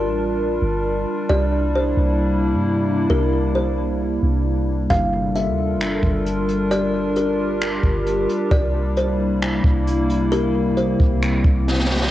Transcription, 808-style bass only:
0.06 A1
0.62 G1
1.30 C2
1.97 C2
2.53 G2
3.10 C2
4.23 C2
4.90 G1
5.47 D2
5.75 G1
6.03 G1
7.83 G1
8.51 C2
9.64 C2
11.00 C2
11.44 C2

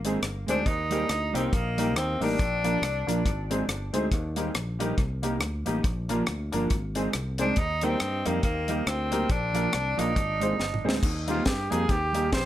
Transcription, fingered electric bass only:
Already playing: G#1
0.22 G1
0.48 D2
0.67 D#2
1.09 D2
1.34 C2
1.53 A#1
1.95 D#2
2.21 A1
2.40 A#1
2.82 C2
3.08 A#1
3.26 G#1
3.68 G1
3.94 D2
4.12 D#2
4.55 A#1
4.98 C2
5.42 D2
5.68 A1
5.84 A#1
6.28 D2
6.54 G1
6.71 G#1
7.15 C2
7.57 D#2
8.01 G2
8.27 F2
8.44 D#2
8.87 D2
9.30 A#1
9.74 C2
9.99 A#1
10.17 G#1
10.60 G1
10.86 D2
11.03 D#2
11.46 G2
11.72 F2
11.90 D#2
12.33 A#1

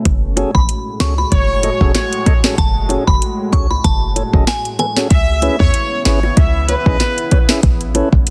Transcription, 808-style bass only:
0.05 F#1
0.55 A1
1.00 C#2
1.32 F#1
1.81 E1
2.58 F#1
3.08 F#1
3.53 C#2
3.84 F#1
4.33 F#1
5.11 C#2
5.60 E2
6.06 G#1
6.37 C#2
6.86 B1
7.63 A1
8.13 A1

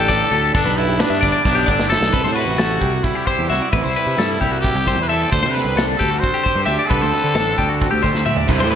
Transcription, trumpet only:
Already playing: A4
0.55 D4
0.77 E4
1.00 D4
1.45 D4
1.88 A4
2.33 F#4
3.04 E4
3.26 G4
3.48 F#4
3.70 E4
4.60 G4
5.02 B4
5.08 A4
5.31 C5
5.47 C5
5.51 B4
5.97 A4
6.19 C5
6.64 G4
6.86 A4

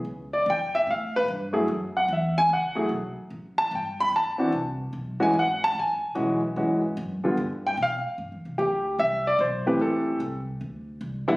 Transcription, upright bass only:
0.05 C#2
0.46 F2
0.87 A2
1.28 G2
1.68 F#2
2.08 E2
2.49 C#2
2.89 B1
3.16 muted upright bass stroke
3.30 A1
3.71 G1
4.12 D2
4.52 C2
4.93 B1
5.19 muted upright bass stroke
5.33 G#1
5.75 A1
6.15 B1
6.56 G#2
6.97 F#2
7.23 muted upright bass stroke
7.37 G2
7.77 B2
8.05 muted upright bass stroke
8.18 G2
8.32 E2
8.45 C2
8.59 D2
8.99 C2
9.39 B1
9.80 A1
10.20 C2
10.61 D2
11.01 C2

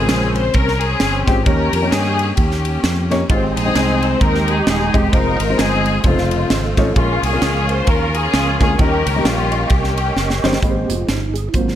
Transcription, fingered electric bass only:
0.09 A#1
0.55 C2
1.01 G1
1.27 G#1
1.46 D#2
1.73 F2
1.92 G2
2.38 D#2
2.83 F2
3.30 G#1
3.56 A#1
3.75 C2
4.21 D#2
4.67 D#1
4.94 E1
5.13 F1
5.40 G#1
5.59 G1
6.04 F1
6.50 G#1
6.77 A1
6.96 A#1
7.23 C2
7.42 C#2
7.87 D#2
8.33 C#2
8.61 D2
8.79 D#2
9.06 C#2
9.25 A#1
9.70 C2
10.16 F#1
10.43 G1
10.62 G#1
10.89 F1
11.08 G1
11.54 G#1

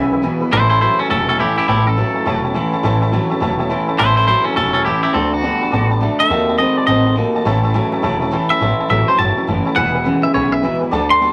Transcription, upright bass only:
Already playing: B1
0.42 muted upright bass stroke
0.52 A1
0.99 muted upright bass stroke
1.10 E1
1.58 muted upright bass stroke
1.68 A1
2.15 muted upright bass stroke
2.26 E1
2.73 muted upright bass stroke
2.84 A1
3.30 muted upright bass stroke
3.41 E1
3.88 muted upright bass stroke
4.00 A1
4.46 muted upright bass stroke
4.57 E1
5.04 muted upright bass stroke
5.15 D2
5.62 muted upright bass stroke
5.73 A1
6.19 muted upright bass stroke
6.30 D#2
6.76 muted upright bass stroke
6.87 A1
7.34 muted upright bass stroke
7.45 A1
7.92 muted upright bass stroke
8.03 E1
8.50 muted upright bass stroke
8.61 A1
8.79 muted upright bass stroke
8.90 A1
9.18 G1
9.36 muted upright bass stroke
9.48 F#1
9.66 muted upright bass stroke
9.77 E1
10.24 muted upright bass stroke
10.35 B1
10.81 muted upright bass stroke
10.92 D2

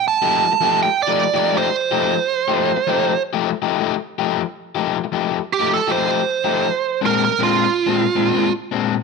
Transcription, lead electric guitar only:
0.08 A5
0.83 G5
1.02 D5
1.58 C5
5.53 G4
5.74 A4
5.92 C5
7.06 A#4
7.25 A#4
7.43 F4

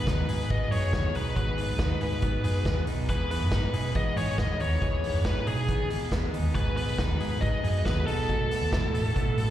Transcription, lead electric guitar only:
Already playing: B4
0.51 D#5
0.72 C#5
1.15 B4
1.37 B4
3.09 B4
3.31 B4
3.96 D#5
4.18 C#5
4.39 D#5
4.61 C#5
5.26 B4
5.48 G#4
6.55 B4
6.77 B4
7.41 D#5
7.85 B4
8.07 A4

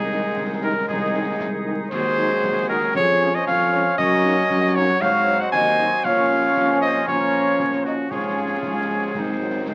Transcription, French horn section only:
0.11 D#3 G#3 D#4
0.63 D#3 G#3 D#4
1.14 D#3 G#3 D#4
1.66 D#3 G#3 D#4
2.17 F#3 G#3 D#4
2.68 F#3 G#3 D#4
3.20 F3 G#3 C#4
3.72 F3 G#3 C#4
4.24 A#3 C#4 D#4
4.75 A#3 C#4 D#4
5.27 F#3 C4 D#4
5.79 F#3 C4 D#4
6.05 F3 C#4
7.08 F3 C#4
8.11 F3 C#4
9.14 D#3 C4 D#4

